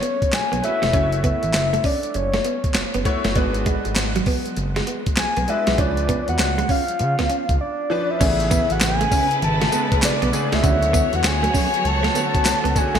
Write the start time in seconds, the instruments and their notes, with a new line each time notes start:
Already playing: grand piano A3 C#4 F#4 B4, soft synth lead C#5
0.02 clean electric guitar B3, closed hi-hat
0.22 kick, closed hi-hat
0.33 analog synth bass B1, soft synth lead G#5, snare, clap, closed hi-hat
0.52 analog synth bass B1, clean electric guitar B3, closed hi-hat
0.62 grand piano A3 C#4 F#4 B4, soft synth lead E5, muted clean electric guitar stroke, closed hi-hat
0.82 analog synth bass E1, clean electric guitar A3, snare, closed hi-hat
0.92 analog synth bass F#1, grand piano A3 E4 F#4 C#5, clean electric guitar C#4, kick, closed hi-hat
1.12 closed hi-hat
1.24 clean electric guitar B3, soft synth lead E5, kick, closed hi-hat
1.43 analog synth bass A1, muted clean electric guitar stroke, closed hi-hat
1.53 analog synth bass F#1, muted clean electric guitar stroke, snare, clap, closed hi-hat
1.73 clean electric guitar A3, closed hi-hat
1.84 clean electric guitar C#4, soft synth lead D5, kick, open hi-hat
2.03 closed hi-hat
2.14 analog synth bass F#1, soft synth lead C#5, muted clean electric guitar stroke, closed hi-hat
2.33 clean electric guitar A3, snare, closed hi-hat
2.44 clean electric guitar B3, closed hi-hat
2.64 kick, closed hi-hat
2.74 analog synth bass F#1, snare, clap, closed hi-hat
2.94 analog synth bass F#1, clean electric guitar B3, closed hi-hat
3.05 grand piano A3 E4 F#4 C#5, muted clean electric guitar stroke, kick, closed hi-hat
3.24 analog synth bass F#1, clean electric guitar A3, snare, closed hi-hat
3.35 analog synth bass G#1, grand piano G#3 D4 F#4 B4, clean electric guitar B3, kick, closed hi-hat
3.54 closed hi-hat
3.66 clean electric guitar G#3, kick, closed hi-hat
3.85 analog synth bass G#1, muted clean electric guitar stroke, closed hi-hat
3.96 analog synth bass G#1, muted clean electric guitar stroke, snare, clap, closed hi-hat
4.16 clean electric guitar F#3, closed hi-hat
4.26 clean electric guitar B3, kick, open hi-hat
4.46 closed hi-hat
4.57 analog synth bass F#1, muted clean electric guitar stroke, closed hi-hat
4.76 clean electric guitar G#3, snare, closed hi-hat
4.87 clean electric guitar B3, closed hi-hat
5.06 kick, closed hi-hat
5.17 analog synth bass B1, soft synth lead G#5, snare, clap, closed hi-hat
5.37 analog synth bass B1, clean electric guitar B3, closed hi-hat
5.48 grand piano G#3 D4 F#4 B4, soft synth lead E5, muted clean electric guitar stroke, closed hi-hat
5.67 analog synth bass B1, clean electric guitar G#3, snare, closed hi-hat
5.78 analog synth bass C#2, grand piano F3 C#4 D4 B4, clean electric guitar C#4, soft synth lead D5, kick, closed hi-hat
5.97 closed hi-hat
6.09 clean electric guitar B3, kick, closed hi-hat
6.28 analog synth bass E2, soft synth lead F#5, muted clean electric guitar stroke, closed hi-hat
6.39 analog synth bass C#2, muted clean electric guitar stroke, snare, clap, closed hi-hat
6.58 clean electric guitar G#3, closed hi-hat
6.69 clean electric guitar C#4, soft synth lead F5, kick, open hi-hat
6.88 closed hi-hat
6.99 analog synth bass C#3, muted clean electric guitar stroke, closed hi-hat
7.19 analog synth bass C#2, clean electric guitar B3, snare, closed hi-hat
7.30 clean electric guitar C#4, closed hi-hat
7.49 analog synth bass C#2, kick, closed hi-hat
7.61 soft synth lead D5
7.90 grand piano F3 C#4 D4 B4
8.10 soft synth lead E5
8.21 analog synth bass A1, grand piano C#3 A3 B3 G#4, string section C#3 B3 E4 B4, clean electric guitar C#4, kick, closed hi-hat, crash, tambourine
8.40 closed hi-hat
8.51 clean electric guitar B3, kick, closed hi-hat, tambourine
8.70 analog synth bass A1, soft synth lead F#5, muted clean electric guitar stroke, closed hi-hat
8.81 analog synth bass A1, soft synth lead G#5, muted clean electric guitar stroke, snare, clap, closed hi-hat, tambourine
9.01 clean electric guitar A3, closed hi-hat
9.12 clean electric guitar C#4, kick, open hi-hat, tambourine
9.31 closed hi-hat
9.42 analog synth bass G#1, soft synth lead A5, muted clean electric guitar stroke, closed hi-hat
9.61 clean electric guitar A3, snare, closed hi-hat
9.72 grand piano C#3 G#3 A3 B3, clean electric guitar B3, closed hi-hat, tambourine
9.92 kick, closed hi-hat
10.02 analog synth bass B1, soft synth lead D5, snare, clap, closed hi-hat, tambourine
10.22 analog synth bass B1, clean electric guitar B3, closed hi-hat
10.32 grand piano C#3 A3 B3 G#4, muted clean electric guitar stroke, closed hi-hat, tambourine
10.52 analog synth bass C#2, clean electric guitar A3, soft synth lead E5, snare, closed hi-hat
10.63 analog synth bass D2, grand piano D3 A3 C#4 F#4, string section F#3 F#4 C#5, clean electric guitar C#4, kick, closed hi-hat, tambourine
10.83 closed hi-hat
10.93 clean electric guitar B3, kick, closed hi-hat, tambourine
11.13 analog synth bass E2, soft synth lead F#5, muted clean electric guitar stroke, closed hi-hat
11.23 analog synth bass D2, soft synth lead G#5, muted clean electric guitar stroke, snare, clap, closed hi-hat, tambourine
11.43 clean electric guitar A3, closed hi-hat
11.54 clean electric guitar C#4, kick, open hi-hat, tambourine
11.74 closed hi-hat
11.84 analog synth bass C#2, soft synth lead A5, muted clean electric guitar stroke, closed hi-hat
12.03 clean electric guitar A3, snare, closed hi-hat
12.14 grand piano D3 A3 C#4 F#4, clean electric guitar B3, closed hi-hat, tambourine
12.35 kick, closed hi-hat
12.45 analog synth bass C#2, snare, clap, closed hi-hat, tambourine
12.64 analog synth bass C#2, clean electric guitar B3, closed hi-hat
12.75 grand piano D3 A3 C#4 F#4, soft synth lead G#5, muted clean electric guitar stroke, kick, closed hi-hat, tambourine
12.95 analog synth bass G#1, clean electric guitar A3, snare, closed hi-hat